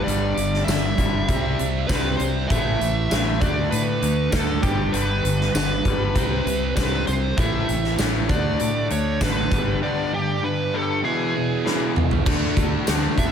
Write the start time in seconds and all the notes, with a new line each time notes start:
Already playing: G2 D3 G3
0.04 G1 G2 D3 G3 D5, closed hi-hat
0.37 G1 G2 D3, closed hi-hat
0.54 snare
0.64 G1 G2 D3 E5
0.68 snare, closed hi-hat, tambourine
0.97 G1 G2 D3 G3, kick, closed hi-hat
1.28 C2 C3 G3 C4, kick, closed hi-hat
1.59 C2 C3 G3, closed hi-hat
1.87 C2 C3 G3 C4 B4, kick, snare, closed hi-hat, tambourine
2.17 C2 C3 G3 C5, closed hi-hat
2.47 A1 A2 E3 A3 E5, kick, closed hi-hat
2.80 A1 A2 E3, closed hi-hat
3.10 A1 A2 E3 A3, snare, closed hi-hat, tambourine
3.41 D2 D3 A3 D4 D5, kick, closed hi-hat
3.71 A2 D3 A3 B4, closed hi-hat
4.02 D2 D3 A3, closed hi-hat
4.32 D2 D3 A3 D4 A4, kick, snare, closed hi-hat, tambourine
4.62 G1 G2 D3 G3 G4, kick, closed hi-hat
4.92 G1 G2 D3 G3 B4, closed hi-hat
5.24 G1 G2 D3, closed hi-hat
5.41 snare
5.54 G1 G2 D3 B4, snare, closed hi-hat, tambourine
5.85 G1 G2 D3 G3, kick, closed hi-hat
6.15 C2 C3 G3 C4, kick, closed hi-hat
6.45 C2 C3 G3, closed hi-hat
6.76 C2 C3 G3 C4 B4, kick, snare, closed hi-hat, tambourine
7.07 C2 C3 G3 C5, closed hi-hat
7.37 A1 A2 E3 A3 E5, kick, closed hi-hat
7.68 A1 A2 E3, closed hi-hat
7.84 snare
7.99 A1 A2 E3 A3, snare, closed hi-hat, tambourine
8.29 D2 D3 A3 D4 D5, kick, closed hi-hat
8.59 A2 D3 A3, closed hi-hat
8.90 D2 D3 A3 C#5, closed hi-hat
9.21 G#1 D3 A3 D4 B4, kick, snare, closed hi-hat, tambourine
9.51 G1 G2 D3 G3, kick, closed hi-hat
9.82 G2 D3 G3 D5
10.13 G2 D3 G4
10.43 G2 D3 B4
10.74 G2 D3 G3 A4
11.04 E2 B2 E3 G#4
11.35 E2 B2
11.65 E2 B2 E3, snare
11.96 E2 B2, mid tom
12.11 floor tom
12.26 D2 D3 A3 D4 F#4 A4, kick, crash
12.56 D2 A3 D4 F#4 A4, kick, closed hi-hat
12.87 D2 D3 A3 D4 F#4 A4, snare, closed hi-hat, tambourine
13.02 D4 F#4 A4
13.17 D2 D3 A3 D4 E5, kick, closed hi-hat